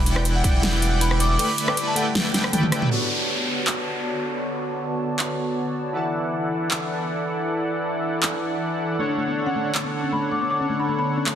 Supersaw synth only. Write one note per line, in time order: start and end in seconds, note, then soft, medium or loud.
0.00 0.42 E3 medium
0.00 0.42 E4 medium
0.00 0.42 D5 medium
0.00 0.42 F#5 medium
0.00 0.42 G5 medium
0.44 1.37 E3 medium
0.44 1.37 E4 medium
0.44 1.37 D5 medium
0.44 1.37 F#5 medium
0.44 1.37 G5 loud
1.39 1.94 A3 medium
1.39 1.94 E4 medium
1.39 1.94 B4 medium
1.39 1.94 D5 medium
1.39 1.94 B5 loud
1.96 2.89 A3 medium
1.96 2.89 E4 medium
1.96 2.89 B4 medium
1.96 2.89 D5 medium
1.96 2.89 G5 medium
2.91 5.93 B3 medium
2.91 5.93 F#4 medium
2.91 5.93 C#5 medium
2.91 5.93 D5 medium
2.91 5.93 A5 medium
5.95 8.96 E3 medium
5.95 8.96 E4 medium
5.95 8.96 A4 medium
5.95 8.96 D5 medium
5.95 8.97 F#5 medium
8.99 11.35 D3 medium
8.99 11.35 D4 medium
8.99 11.35 A4 medium
8.99 11.35 C#5 medium
8.99 11.35 F#5 medium